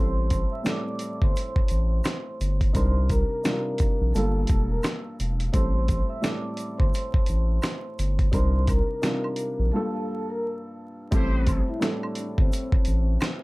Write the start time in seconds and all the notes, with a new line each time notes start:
Already playing: A1 A2 G3 A3 C4 A4 C5 C6
0.30 kick, closed hi-hat, shaker
0.52 E5 E6
0.63 A2 G3 A3 C4 A4 D5, snare, closed hi-hat, shaker
0.67 D6
0.99 closed hi-hat, shaker
1.22 G1 C5 C6, kick
1.36 closed hi-hat, shaker
1.56 kick
1.68 A1, closed hi-hat, shaker
2.04 snare, closed hi-hat, high woodblock, shaker
2.41 G1, closed hi-hat, shaker
2.61 kick, closed hi-hat
2.73 C2 C3 G3 D4 D#4 A#4 C5 C6, kick, closed hi-hat, shaker
3.09 A#4 A#5, kick, closed hi-hat, shaker
3.44 C3 G3 D4 D#4 F4, snare, closed hi-hat, shaker
3.78 kick, closed hi-hat, shaker
4.01 A#1
4.13 G1 G2 G3 A#3 F4 A4 A5, closed hi-hat, shaker
4.17 A4
4.47 E1, kick, closed hi-hat, shaker
4.69 A#4 A#5
4.83 snare, closed hi-hat, high woodblock, shaker
5.20 E1, closed hi-hat, shaker
5.40 closed hi-hat
5.52 A1 A2 G3 A3 C4 A4 C5 C6, kick, closed hi-hat, shaker
5.88 kick, closed hi-hat, shaker
6.09 E5 E6
6.21 A2 G3 A3 C4 A4 D5 D6, snare, closed hi-hat, shaker
6.57 closed hi-hat, shaker
6.78 G1 C5 C6, kick
6.94 closed hi-hat, shaker
7.14 kick
7.26 A1, closed hi-hat, shaker
7.62 snare, closed hi-hat, high woodblock, shaker
7.99 G1, closed hi-hat, shaker
8.19 kick, closed hi-hat
8.31 C2 C3 G3 D4 D#4 A#4 C5 C6, kick, closed hi-hat, shaker
8.67 A#4 A#5, kick, closed hi-hat, high woodblock, shaker
9.02 C3 G3 D4 D#4 F4, snare, closed hi-hat, shaker
9.24 high woodblock
9.36 closed hi-hat, shaker
9.59 A#1
9.72 G2 G3 A#3 F4 A4 A5
9.76 A4
10.29 A#4 A#5
11.11 A1 A2 G3 A3 C4 E4 G4 A4 C5, kick, closed hi-hat, shaker
11.47 kick, closed hi-hat, high woodblock, shaker
11.68 E4 E5
11.79 A2 G3 A3 C4 D4 A4, snare, closed hi-hat, shaker
11.84 D5
12.03 high woodblock
12.15 closed hi-hat, shaker
12.38 G1 C4 C5, kick
12.52 closed hi-hat, shaker
12.72 kick
12.85 A1, closed hi-hat, shaker
13.21 snare, closed hi-hat, high woodblock, shaker